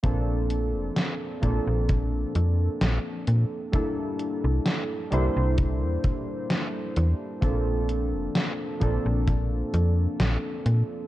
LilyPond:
<<
  \new Staff \with { instrumentName = "Synth keys" } { \time 4/4 \key bes \lydian \tempo 4 = 65 <f bes c' d' a'>4. <f bes c' d' a'>2~ <f bes c' d' a'>8 | <g bes d' e' a'>4. <g bes d' e' c''>2~ <g bes d' e' c''>8 | <f bes c' d' a'>4. <f bes c' d' a'>2~ <f bes c' d' a'>8 | }
  \new Staff \with { instrumentName = "FM bass" } { \clef bass \time 4/4 \key bes \lydian bes,,8. f,,16 r8 bes,,16 bes,,8. f,16 r16 bes,,16 r16 bes,16 r16 | r8. c,16 r8 c,16 c,8 e,16 r4 e,16 r16 | bes,,8. f,,16 r8 bes,,16 bes,,8. f,16 r16 bes,,16 r16 bes,16 r16 | }
  \new DrumStaff \with { instrumentName = "Drums" } \drummode { \time 4/4 <hh bd>8 hh8 <hh sn>8 <hh bd>8 <hh bd>8 hh8 <hh sn>8 hh8 | <hh bd>8 hh8 <hh sn>8 hh8 <hh bd>8 <hh bd>8 <hh sn>8 hh8 | <hh bd>8 hh8 <hh sn>8 <hh bd>8 <hh bd>8 hh8 <hh sn>8 hh8 | }
>>